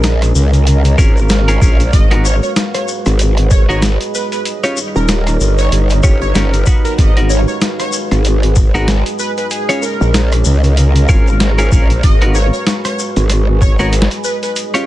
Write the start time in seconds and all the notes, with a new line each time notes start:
Already playing: A#1 G#3 C#4 G#4 A#4 D#5
0.02 A#5, snare, closed hi-hat, shekere
0.22 F5, cross-stick, closed hi-hat, shekere
0.35 C#2, shekere
0.53 C#6, closed hi-hat, shekere
0.67 closed hi-hat, shekere
0.85 closed hi-hat, shekere
0.98 G#1 C#4 F4 G#4 A#4, kick, shekere
1.17 shekere
1.29 snare, closed hi-hat, shekere
1.48 C#4 F4 G#4 A#4, closed hi-hat, shekere
1.61 A#1 C#4 F4 G#4 A#4, kick, shekere
1.80 closed hi-hat, shekere
1.93 G#1 F#4 G#4 B4 D#5, kick, closed hi-hat, shekere
2.11 B3 D#4 F#4 A#4, closed hi-hat
2.25 C#5, shekere
2.43 C#5, shekere
2.56 D#5, snare, closed hi-hat, shekere
2.74 C#5, cross-stick, closed hi-hat, shekere
2.88 shekere
3.06 G#1 B5, cross-stick, closed hi-hat, shekere
3.19 closed hi-hat, shekere
3.37 closed hi-hat
3.51 C#5, kick, shekere
3.69 G#1 B3 D#4 F#4 A#4 C#5, shekere
3.82 snare, closed hi-hat, shekere
4.01 closed hi-hat, shekere
4.15 B4, shekere
4.32 B4, closed hi-hat, shekere
4.45 G3 D#4 C#5, closed hi-hat, shekere
4.64 C#4 F4 G4 C#5, closed hi-hat, shekere
4.77 A#4, shekere
4.96 D#1 A#4, shekere
5.08 snare, closed hi-hat, shekere
5.27 cross-stick, closed hi-hat, shekere
5.41 G1 G4, shekere
5.58 C#5 F5, closed hi-hat, shekere
5.72 G1, closed hi-hat, shekere
5.90 closed hi-hat, shekere
6.03 G1 C#4 F4 G4 C#5, kick, shekere
6.21 C#5, shekere
6.35 G1 C#4 F4 G4 A#4, snare, closed hi-hat, shekere
6.54 closed hi-hat, shekere
6.67 B3 D#4 F#4 B4, kick, shekere
6.85 A#4, closed hi-hat, shekere
6.98 G#1 G#3 F#4 G#4 B4 D#5, kick, closed hi-hat, shekere
7.17 B3 D#4 F#4 A#4, closed hi-hat
7.30 C#5, shekere
7.48 C#5, shekere
7.61 snare, closed hi-hat, shekere
7.74 D#5
7.80 C#5, cross-stick, closed hi-hat, shekere
7.93 shekere
8.11 G#1 B5, cross-stick, closed hi-hat, shekere
8.25 closed hi-hat, shekere
8.43 closed hi-hat
8.56 kick, shekere
8.74 G#1 B3 D#4 F#4 A#4, shekere
8.88 snare, closed hi-hat, shekere
9.06 closed hi-hat, shekere
9.19 B4, shekere
9.38 B4, closed hi-hat, shekere
9.51 C#4 G#4 A#4, closed hi-hat, shekere
9.69 C#4 F4 G#4 C#5, closed hi-hat, shekere
9.82 A#4 A#5, shekere
10.00 A#1 F5, shekere
10.14 snare, closed hi-hat, shekere
10.32 cross-stick, closed hi-hat, shekere
10.45 C#2, shekere
10.64 C#6, closed hi-hat, shekere
10.77 closed hi-hat, shekere
10.96 closed hi-hat, shekere
11.09 G#1 C#4 F4 G#4 A#4, kick, shekere
11.27 shekere
11.40 snare, closed hi-hat, shekere
11.58 C#4 F4 G#4 A#4, closed hi-hat, shekere
11.72 A#1 C#4 F4 G#4 A#4, kick, shekere
11.90 closed hi-hat, shekere
12.03 G#1 G#3 F#4 G#4 B4 D#5, kick, closed hi-hat, shekere
12.22 B3 D#4 F#4 A#4, closed hi-hat
12.35 C#5, shekere
12.53 C#5, shekere
12.67 snare, closed hi-hat, shekere
12.85 C#5, cross-stick, closed hi-hat, shekere
12.99 shekere
13.16 G#1 D#5 B5, closed hi-hat, shekere
13.30 cross-stick, closed hi-hat, shekere
13.62 C#5, kick, shekere
13.79 G#1 B3 D#4 F#4 A#4 C#5, shekere
13.93 closed hi-hat, shekere
14.02 snare
14.11 closed hi-hat, shekere
14.24 B4, shekere
14.43 B4, closed hi-hat, shekere
14.56 G3 D#4 C#5, closed hi-hat, shekere
14.74 C#4 F4 G4 C#5, closed hi-hat, shekere